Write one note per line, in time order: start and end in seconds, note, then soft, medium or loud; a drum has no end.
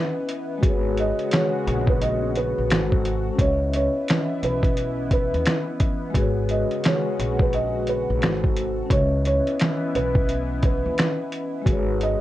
0.00 0.60 E3 medium
0.00 2.66 B3 medium
0.00 0.57 C#4 medium
0.00 0.60 E4 medium
0.00 0.58 B4 medium
0.00 0.60 B4 medium
0.00 0.60 D#5 medium
0.00 0.62 E5 medium
0.29 closed hi-hat medium
0.58 2.63 G#3 medium
0.58 2.65 F#4 medium
0.63 1.11 G#1 medium
0.63 2.67 C#3 medium
0.63 2.68 G#3 medium
0.63 2.68 F#4 medium
0.63 2.66 G#4 medium
0.63 2.67 B4 medium
0.63 kick loud
0.63 closed hi-hat medium
0.69 2.69 C#5 medium
0.97 1.30 D#5 medium
0.97 closed hi-hat medium
1.19 closed hi-hat soft
1.31 1.85 C#5 medium
1.31 finger snap medium
1.31 snare loud
1.31 closed hi-hat medium
1.67 2.53 A#1 loud
1.67 closed hi-hat medium
1.87 2.00 B4 medium
1.87 kick medium
2.02 2.32 D#5 medium
2.02 closed hi-hat medium
2.36 2.89 B4 medium
2.36 closed hi-hat medium
2.58 2.68 A#1 medium
2.67 3.29 G#1 loud
2.67 3.38 G#3 medium
2.67 3.38 F#4 medium
2.67 3.39 A4 medium
2.67 closed hi-hat medium
2.72 3.40 C5 medium
2.72 finger snap medium
2.72 snare loud
2.92 kick medium
3.05 closed hi-hat medium
3.34 6.08 C#4 medium
3.34 6.10 B4 medium
3.39 3.87 C#2 medium
3.39 6.12 E3 medium
3.39 8.17 B3 medium
3.39 6.12 E4 medium
3.39 3.71 C#5 medium
3.39 6.12 D#5 medium
3.39 kick loud
3.39 closed hi-hat medium
3.45 6.13 E5 medium
3.73 4.39 C#5 medium
3.73 closed hi-hat medium
4.08 finger snap medium
4.08 snare loud
4.08 closed hi-hat medium
4.43 5.29 B1 medium
4.43 5.08 B4 medium
4.43 closed hi-hat medium
4.63 kick medium
4.63 closed hi-hat soft
4.77 closed hi-hat medium
5.11 6.12 B4 medium
5.11 kick medium
5.11 closed hi-hat medium
5.34 5.44 D#2 medium
5.34 closed hi-hat soft
5.46 finger snap medium
5.46 snare loud
5.46 closed hi-hat medium
5.80 kick medium
5.80 closed hi-hat medium
6.10 8.15 G#3 medium
6.10 8.17 F#4 medium
6.14 6.62 G#1 loud
6.14 8.20 C#3 medium
6.14 8.20 G#3 medium
6.14 8.88 F#4 medium
6.14 8.18 G#4 medium
6.14 8.19 B4 medium
6.14 kick loud
6.14 closed hi-hat medium
6.21 8.21 C#5 medium
6.49 6.81 D#5 medium
6.49 closed hi-hat medium
6.71 closed hi-hat soft
6.84 7.38 C#5 medium
6.84 finger snap medium
6.84 snare loud
6.84 closed hi-hat medium
7.19 8.05 A#1 loud
7.19 closed hi-hat medium
7.39 7.52 B4 medium
7.39 kick medium
7.53 7.84 D#5 medium
7.53 closed hi-hat medium
7.87 8.41 B4 medium
7.87 closed hi-hat medium
8.10 8.20 A#1 medium
8.20 8.81 G#1 loud
8.20 8.90 G#3 medium
8.20 8.90 F#4 medium
8.20 8.91 A4 medium
8.20 finger snap medium
8.20 snare loud
8.20 closed hi-hat loud
8.25 8.92 C5 medium
8.44 kick medium
8.57 closed hi-hat medium
8.86 11.63 E3 medium
8.86 11.63 B3 medium
8.86 11.60 C#4 medium
8.86 11.62 B4 medium
8.90 9.38 C#2 loud
8.90 11.63 E4 medium
8.90 9.22 C#5 loud
8.90 11.64 D#5 medium
8.90 kick loud
8.90 closed hi-hat medium
8.97 11.65 E5 medium
9.25 9.95 C#5 medium
9.25 closed hi-hat medium
9.47 closed hi-hat soft
9.59 finger snap medium
9.59 snare medium
9.59 closed hi-hat medium
9.95 10.81 B1 medium
9.95 10.60 B4 medium
9.95 closed hi-hat medium
10.15 kick loud
10.29 closed hi-hat medium
10.63 11.63 B4 medium
10.63 kick medium
10.63 closed hi-hat medium
10.86 10.96 D#2 medium
10.98 finger snap medium
10.98 snare loud
10.98 closed hi-hat medium
11.32 closed hi-hat medium
11.62 12.21 G#3 medium
11.62 12.21 B3 medium
11.62 12.21 F#4 medium
11.66 12.14 G#1 loud
11.66 12.21 C#3 medium
11.66 12.21 G#3 medium
11.66 12.21 F#4 medium
11.66 12.21 G#4 medium
11.66 kick loud
11.66 closed hi-hat medium
11.70 12.21 B4 medium
11.70 12.21 C#5 medium
12.01 12.21 D#5 medium
12.01 closed hi-hat medium